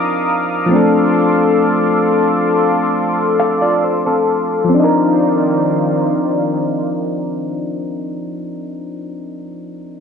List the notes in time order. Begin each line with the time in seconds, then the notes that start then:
Already playing: F3 C4 D4 D#4 A#4 F5 D6 D#6
0.66 F3 A3
0.71 C4 D4 A4 C6 D6
0.76 A4
3.40 A4 F5
3.62 F4 D5
3.84 C5
4.07 C4 A4
4.64 F3
4.69 C4
4.74 D#3 D4 A#4 C5 D5 F5
4.79 D#4
4.84 A#4